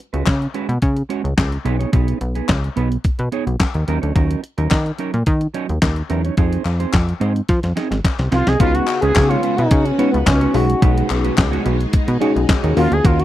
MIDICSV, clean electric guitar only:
0, 0, Header, 1, 3, 480
1, 0, Start_track
1, 0, Tempo, 555556
1, 1670, Time_signature, 4, 2, 24, 8
1, 11443, End_track
2, 0, Start_track
2, 0, Title_t, "Clean electric guitar"
2, 0, Program_c, 0, 27
2, 111, Note_on_c, 0, 71, 59
2, 115, Note_on_c, 0, 66, 57
2, 118, Note_on_c, 0, 61, 52
2, 123, Note_on_c, 0, 56, 51
2, 229, Note_off_c, 0, 71, 0
2, 231, Note_off_c, 0, 66, 0
2, 232, Note_off_c, 0, 61, 0
2, 235, Note_off_c, 0, 56, 0
2, 465, Note_on_c, 0, 56, 74
2, 468, Note_on_c, 0, 61, 80
2, 472, Note_on_c, 0, 66, 91
2, 476, Note_on_c, 0, 71, 92
2, 586, Note_off_c, 0, 71, 0
2, 589, Note_off_c, 0, 66, 0
2, 593, Note_off_c, 0, 61, 0
2, 628, Note_off_c, 0, 56, 0
2, 942, Note_on_c, 0, 56, 81
2, 946, Note_on_c, 0, 61, 92
2, 950, Note_on_c, 0, 66, 87
2, 953, Note_on_c, 0, 73, 96
2, 1066, Note_off_c, 0, 66, 0
2, 1069, Note_off_c, 0, 61, 0
2, 1069, Note_off_c, 0, 73, 0
2, 1107, Note_off_c, 0, 56, 0
2, 1421, Note_on_c, 0, 59, 82
2, 1425, Note_on_c, 0, 63, 90
2, 1428, Note_on_c, 0, 68, 89
2, 1430, Note_on_c, 0, 71, 100
2, 1542, Note_off_c, 0, 68, 0
2, 1544, Note_off_c, 0, 63, 0
2, 1544, Note_off_c, 0, 71, 0
2, 1546, Note_off_c, 0, 59, 0
2, 1548, Note_on_c, 0, 73, 65
2, 1552, Note_on_c, 0, 68, 56
2, 1555, Note_on_c, 0, 63, 61
2, 1557, Note_on_c, 0, 59, 51
2, 1650, Note_off_c, 0, 59, 0
2, 1654, Note_off_c, 0, 63, 0
2, 1656, Note_off_c, 0, 68, 0
2, 1660, Note_on_c, 0, 59, 78
2, 1664, Note_on_c, 0, 63, 75
2, 1667, Note_off_c, 0, 73, 0
2, 1667, Note_on_c, 0, 68, 71
2, 1670, Note_on_c, 0, 71, 87
2, 1887, Note_off_c, 0, 59, 0
2, 1889, Note_off_c, 0, 63, 0
2, 1890, Note_off_c, 0, 68, 0
2, 1892, Note_off_c, 0, 71, 0
2, 2032, Note_on_c, 0, 71, 61
2, 2036, Note_on_c, 0, 68, 60
2, 2038, Note_on_c, 0, 63, 53
2, 2043, Note_on_c, 0, 59, 49
2, 2149, Note_off_c, 0, 71, 0
2, 2151, Note_off_c, 0, 68, 0
2, 2152, Note_off_c, 0, 63, 0
2, 2155, Note_off_c, 0, 59, 0
2, 2383, Note_on_c, 0, 59, 84
2, 2387, Note_on_c, 0, 63, 84
2, 2391, Note_on_c, 0, 68, 74
2, 2393, Note_on_c, 0, 71, 90
2, 2503, Note_off_c, 0, 71, 0
2, 2507, Note_off_c, 0, 68, 0
2, 2510, Note_off_c, 0, 63, 0
2, 2547, Note_off_c, 0, 59, 0
2, 2866, Note_on_c, 0, 59, 75
2, 2871, Note_on_c, 0, 63, 83
2, 2873, Note_on_c, 0, 68, 89
2, 2877, Note_on_c, 0, 73, 86
2, 2989, Note_off_c, 0, 68, 0
2, 2990, Note_off_c, 0, 73, 0
2, 2991, Note_off_c, 0, 63, 0
2, 3029, Note_off_c, 0, 59, 0
2, 3346, Note_on_c, 0, 54, 78
2, 3350, Note_on_c, 0, 61, 85
2, 3353, Note_on_c, 0, 63, 95
2, 3356, Note_on_c, 0, 70, 94
2, 3464, Note_off_c, 0, 63, 0
2, 3467, Note_off_c, 0, 61, 0
2, 3467, Note_off_c, 0, 70, 0
2, 3470, Note_off_c, 0, 54, 0
2, 3471, Note_on_c, 0, 73, 62
2, 3475, Note_on_c, 0, 63, 54
2, 3477, Note_on_c, 0, 61, 49
2, 3480, Note_on_c, 0, 54, 48
2, 3573, Note_off_c, 0, 54, 0
2, 3579, Note_off_c, 0, 61, 0
2, 3581, Note_off_c, 0, 63, 0
2, 3583, Note_on_c, 0, 54, 74
2, 3589, Note_off_c, 0, 73, 0
2, 3589, Note_on_c, 0, 61, 83
2, 3591, Note_on_c, 0, 63, 78
2, 3595, Note_on_c, 0, 70, 80
2, 3809, Note_off_c, 0, 54, 0
2, 3811, Note_off_c, 0, 61, 0
2, 3812, Note_off_c, 0, 63, 0
2, 3814, Note_off_c, 0, 70, 0
2, 3954, Note_on_c, 0, 70, 64
2, 3957, Note_on_c, 0, 63, 57
2, 3961, Note_on_c, 0, 61, 60
2, 3965, Note_on_c, 0, 54, 53
2, 4070, Note_off_c, 0, 70, 0
2, 4072, Note_off_c, 0, 63, 0
2, 4074, Note_off_c, 0, 61, 0
2, 4076, Note_off_c, 0, 54, 0
2, 4305, Note_on_c, 0, 54, 78
2, 4310, Note_on_c, 0, 61, 85
2, 4314, Note_on_c, 0, 63, 86
2, 4317, Note_on_c, 0, 70, 93
2, 4424, Note_off_c, 0, 70, 0
2, 4427, Note_off_c, 0, 63, 0
2, 4431, Note_off_c, 0, 61, 0
2, 4468, Note_off_c, 0, 54, 0
2, 4784, Note_on_c, 0, 54, 85
2, 4789, Note_on_c, 0, 61, 87
2, 4791, Note_on_c, 0, 63, 90
2, 4793, Note_on_c, 0, 73, 88
2, 4908, Note_off_c, 0, 63, 0
2, 4911, Note_off_c, 0, 61, 0
2, 4911, Note_off_c, 0, 73, 0
2, 4947, Note_off_c, 0, 54, 0
2, 5263, Note_on_c, 0, 54, 75
2, 5267, Note_on_c, 0, 61, 82
2, 5271, Note_on_c, 0, 63, 83
2, 5274, Note_on_c, 0, 70, 84
2, 5388, Note_off_c, 0, 63, 0
2, 5391, Note_off_c, 0, 61, 0
2, 5391, Note_off_c, 0, 70, 0
2, 5394, Note_off_c, 0, 54, 0
2, 5394, Note_on_c, 0, 73, 50
2, 5398, Note_on_c, 0, 63, 55
2, 5401, Note_on_c, 0, 61, 50
2, 5404, Note_on_c, 0, 54, 48
2, 5497, Note_off_c, 0, 63, 0
2, 5501, Note_off_c, 0, 54, 0
2, 5504, Note_off_c, 0, 61, 0
2, 5504, Note_on_c, 0, 60, 75
2, 5507, Note_on_c, 0, 63, 78
2, 5509, Note_on_c, 0, 68, 84
2, 5510, Note_off_c, 0, 73, 0
2, 5513, Note_on_c, 0, 72, 88
2, 5729, Note_off_c, 0, 60, 0
2, 5731, Note_off_c, 0, 63, 0
2, 5732, Note_off_c, 0, 68, 0
2, 5734, Note_off_c, 0, 72, 0
2, 5870, Note_on_c, 0, 72, 65
2, 5874, Note_on_c, 0, 68, 61
2, 5878, Note_on_c, 0, 63, 53
2, 5882, Note_on_c, 0, 60, 52
2, 5988, Note_off_c, 0, 72, 0
2, 5990, Note_off_c, 0, 68, 0
2, 5992, Note_off_c, 0, 63, 0
2, 5994, Note_off_c, 0, 60, 0
2, 6219, Note_on_c, 0, 60, 75
2, 6224, Note_on_c, 0, 63, 82
2, 6227, Note_on_c, 0, 68, 80
2, 6230, Note_on_c, 0, 72, 92
2, 6340, Note_off_c, 0, 72, 0
2, 6344, Note_off_c, 0, 68, 0
2, 6346, Note_off_c, 0, 63, 0
2, 6385, Note_off_c, 0, 60, 0
2, 6701, Note_on_c, 0, 60, 75
2, 6706, Note_on_c, 0, 63, 79
2, 6710, Note_on_c, 0, 68, 83
2, 6711, Note_on_c, 0, 75, 85
2, 6823, Note_off_c, 0, 68, 0
2, 6825, Note_off_c, 0, 75, 0
2, 6826, Note_off_c, 0, 63, 0
2, 6866, Note_off_c, 0, 60, 0
2, 7182, Note_on_c, 0, 60, 86
2, 7187, Note_on_c, 0, 63, 88
2, 7189, Note_on_c, 0, 68, 87
2, 7193, Note_on_c, 0, 72, 87
2, 7306, Note_off_c, 0, 68, 0
2, 7308, Note_off_c, 0, 72, 0
2, 7309, Note_off_c, 0, 63, 0
2, 7311, Note_off_c, 0, 60, 0
2, 7312, Note_on_c, 0, 75, 60
2, 7316, Note_on_c, 0, 68, 51
2, 7319, Note_on_c, 0, 63, 51
2, 7321, Note_on_c, 0, 60, 51
2, 7421, Note_off_c, 0, 60, 0
2, 7424, Note_off_c, 0, 63, 0
2, 7424, Note_on_c, 0, 56, 90
2, 7428, Note_off_c, 0, 68, 0
2, 7428, Note_on_c, 0, 61, 100
2, 7429, Note_off_c, 0, 75, 0
2, 7432, Note_on_c, 0, 66, 104
2, 7434, Note_on_c, 0, 71, 93
2, 7649, Note_off_c, 0, 56, 0
2, 7651, Note_off_c, 0, 61, 0
2, 7653, Note_off_c, 0, 66, 0
2, 7654, Note_off_c, 0, 71, 0
2, 7796, Note_on_c, 0, 71, 72
2, 7799, Note_on_c, 0, 66, 68
2, 7802, Note_on_c, 0, 61, 63
2, 7805, Note_on_c, 0, 56, 61
2, 7896, Note_off_c, 0, 56, 0
2, 7897, Note_off_c, 0, 61, 0
2, 7901, Note_off_c, 0, 66, 0
2, 7901, Note_off_c, 0, 71, 0
2, 8035, Note_on_c, 0, 73, 82
2, 8039, Note_on_c, 0, 66, 77
2, 8041, Note_on_c, 0, 61, 73
2, 8045, Note_on_c, 0, 56, 69
2, 8136, Note_off_c, 0, 56, 0
2, 8140, Note_off_c, 0, 61, 0
2, 8143, Note_off_c, 0, 66, 0
2, 8146, Note_on_c, 0, 56, 74
2, 8150, Note_on_c, 0, 61, 75
2, 8153, Note_on_c, 0, 66, 73
2, 8154, Note_off_c, 0, 73, 0
2, 8157, Note_on_c, 0, 71, 83
2, 8263, Note_off_c, 0, 71, 0
2, 8266, Note_off_c, 0, 66, 0
2, 8269, Note_off_c, 0, 61, 0
2, 8277, Note_off_c, 0, 56, 0
2, 8625, Note_on_c, 0, 56, 101
2, 8629, Note_on_c, 0, 61, 104
2, 8631, Note_on_c, 0, 66, 104
2, 8635, Note_on_c, 0, 73, 110
2, 8746, Note_off_c, 0, 66, 0
2, 8748, Note_off_c, 0, 61, 0
2, 8749, Note_off_c, 0, 73, 0
2, 8788, Note_off_c, 0, 56, 0
2, 8991, Note_on_c, 0, 73, 70
2, 8996, Note_on_c, 0, 66, 64
2, 8998, Note_on_c, 0, 61, 54
2, 9002, Note_on_c, 0, 56, 49
2, 9090, Note_off_c, 0, 56, 0
2, 9098, Note_off_c, 0, 66, 0
2, 9101, Note_on_c, 0, 56, 87
2, 9102, Note_off_c, 0, 61, 0
2, 9106, Note_on_c, 0, 63, 86
2, 9108, Note_off_c, 0, 73, 0
2, 9108, Note_on_c, 0, 66, 84
2, 9111, Note_on_c, 0, 71, 86
2, 9224, Note_off_c, 0, 71, 0
2, 9228, Note_off_c, 0, 66, 0
2, 9231, Note_off_c, 0, 63, 0
2, 9266, Note_off_c, 0, 56, 0
2, 9342, Note_on_c, 0, 56, 80
2, 9348, Note_on_c, 0, 63, 94
2, 9351, Note_on_c, 0, 66, 84
2, 9353, Note_on_c, 0, 71, 97
2, 9568, Note_off_c, 0, 56, 0
2, 9571, Note_off_c, 0, 63, 0
2, 9573, Note_off_c, 0, 66, 0
2, 9573, Note_off_c, 0, 71, 0
2, 9711, Note_on_c, 0, 71, 68
2, 9715, Note_on_c, 0, 66, 64
2, 9718, Note_on_c, 0, 63, 57
2, 9721, Note_on_c, 0, 56, 53
2, 9812, Note_off_c, 0, 56, 0
2, 9817, Note_off_c, 0, 63, 0
2, 9819, Note_off_c, 0, 66, 0
2, 9821, Note_off_c, 0, 71, 0
2, 9949, Note_on_c, 0, 73, 98
2, 9954, Note_on_c, 0, 66, 85
2, 9957, Note_on_c, 0, 63, 82
2, 9960, Note_on_c, 0, 56, 82
2, 10050, Note_off_c, 0, 56, 0
2, 10054, Note_off_c, 0, 63, 0
2, 10057, Note_off_c, 0, 66, 0
2, 10060, Note_on_c, 0, 56, 64
2, 10064, Note_on_c, 0, 63, 70
2, 10068, Note_off_c, 0, 73, 0
2, 10068, Note_on_c, 0, 66, 70
2, 10071, Note_on_c, 0, 71, 76
2, 10178, Note_off_c, 0, 71, 0
2, 10182, Note_off_c, 0, 66, 0
2, 10184, Note_off_c, 0, 63, 0
2, 10194, Note_off_c, 0, 56, 0
2, 10543, Note_on_c, 0, 56, 92
2, 10549, Note_on_c, 0, 63, 100
2, 10552, Note_on_c, 0, 66, 101
2, 10555, Note_on_c, 0, 73, 105
2, 10663, Note_off_c, 0, 66, 0
2, 10667, Note_off_c, 0, 73, 0
2, 10668, Note_off_c, 0, 63, 0
2, 10707, Note_off_c, 0, 56, 0
2, 10911, Note_on_c, 0, 73, 70
2, 10914, Note_on_c, 0, 66, 65
2, 10917, Note_on_c, 0, 63, 60
2, 10921, Note_on_c, 0, 56, 59
2, 11023, Note_off_c, 0, 56, 0
2, 11023, Note_off_c, 0, 66, 0
2, 11026, Note_off_c, 0, 63, 0
2, 11027, Note_on_c, 0, 58, 93
2, 11029, Note_off_c, 0, 73, 0
2, 11029, Note_on_c, 0, 61, 95
2, 11034, Note_on_c, 0, 66, 103
2, 11036, Note_on_c, 0, 70, 100
2, 11146, Note_off_c, 0, 70, 0
2, 11149, Note_off_c, 0, 66, 0
2, 11153, Note_off_c, 0, 61, 0
2, 11189, Note_off_c, 0, 58, 0
2, 11263, Note_on_c, 0, 58, 83
2, 11267, Note_on_c, 0, 61, 81
2, 11271, Note_on_c, 0, 66, 97
2, 11275, Note_on_c, 0, 70, 99
2, 11443, Note_off_c, 0, 58, 0
2, 11443, Note_off_c, 0, 61, 0
2, 11443, Note_off_c, 0, 66, 0
2, 11443, Note_off_c, 0, 70, 0
2, 11443, End_track
3, 0, Start_track
3, 0, Title_t, "Muted clean electric guitar strokes"
3, 354, Note_on_c, 9, 29, 41
3, 440, Note_off_c, 9, 29, 0
3, 596, Note_on_c, 9, 29, 53
3, 682, Note_off_c, 9, 29, 0
3, 833, Note_on_c, 9, 29, 47
3, 919, Note_off_c, 9, 29, 0
3, 1182, Note_on_c, 9, 29, 49
3, 1268, Note_off_c, 9, 29, 0
3, 1309, Note_on_c, 9, 29, 45
3, 1395, Note_off_c, 9, 29, 0
3, 1903, Note_on_c, 9, 29, 41
3, 1989, Note_off_c, 9, 29, 0
3, 2272, Note_on_c, 9, 29, 41
3, 2358, Note_off_c, 9, 29, 0
3, 2514, Note_on_c, 9, 29, 43
3, 2600, Note_off_c, 9, 29, 0
3, 2753, Note_on_c, 9, 29, 43
3, 2839, Note_off_c, 9, 29, 0
3, 2994, Note_on_c, 9, 29, 37
3, 3080, Note_off_c, 9, 29, 0
3, 3104, Note_on_c, 9, 29, 46
3, 3190, Note_off_c, 9, 29, 0
3, 3236, Note_on_c, 9, 29, 47
3, 3323, Note_off_c, 9, 29, 0
3, 3824, Note_on_c, 9, 29, 49
3, 3910, Note_off_c, 9, 29, 0
3, 4192, Note_on_c, 9, 29, 44
3, 4278, Note_off_c, 9, 29, 0
3, 4434, Note_on_c, 9, 29, 47
3, 4521, Note_off_c, 9, 29, 0
3, 4673, Note_on_c, 9, 29, 52
3, 4759, Note_off_c, 9, 29, 0
3, 4915, Note_on_c, 9, 29, 42
3, 5001, Note_off_c, 9, 29, 0
3, 5156, Note_on_c, 9, 29, 46
3, 5242, Note_off_c, 9, 29, 0
3, 6111, Note_on_c, 9, 29, 45
3, 6197, Note_off_c, 9, 29, 0
3, 6351, Note_on_c, 9, 29, 47
3, 6437, Note_off_c, 9, 29, 0
3, 6589, Note_on_c, 9, 29, 41
3, 6675, Note_off_c, 9, 29, 0
3, 6829, Note_on_c, 9, 29, 36
3, 6915, Note_off_c, 9, 29, 0
3, 6946, Note_on_c, 9, 29, 48
3, 7033, Note_off_c, 9, 29, 0
3, 7073, Note_on_c, 9, 29, 48
3, 7160, Note_off_c, 9, 29, 0
3, 7667, Note_on_c, 9, 29, 47
3, 7753, Note_off_c, 9, 29, 0
3, 7906, Note_on_c, 9, 29, 41
3, 7992, Note_off_c, 9, 29, 0
3, 8273, Note_on_c, 9, 29, 44
3, 8360, Note_off_c, 9, 29, 0
3, 8388, Note_on_c, 9, 29, 42
3, 8475, Note_off_c, 9, 29, 0
3, 8517, Note_on_c, 9, 29, 47
3, 8603, Note_off_c, 9, 29, 0
3, 8753, Note_on_c, 9, 29, 41
3, 8839, Note_off_c, 9, 29, 0
3, 8868, Note_on_c, 9, 29, 49
3, 8954, Note_off_c, 9, 29, 0
3, 9235, Note_on_c, 9, 29, 50
3, 9321, Note_off_c, 9, 29, 0
3, 10189, Note_on_c, 9, 29, 48
3, 10275, Note_off_c, 9, 29, 0
3, 10303, Note_on_c, 9, 29, 46
3, 10389, Note_off_c, 9, 29, 0
3, 10429, Note_on_c, 9, 29, 42
3, 10516, Note_off_c, 9, 29, 0
3, 10671, Note_on_c, 9, 29, 45
3, 10757, Note_off_c, 9, 29, 0
3, 11156, Note_on_c, 9, 29, 44
3, 11242, Note_off_c, 9, 29, 0
3, 11443, End_track
0, 0, End_of_file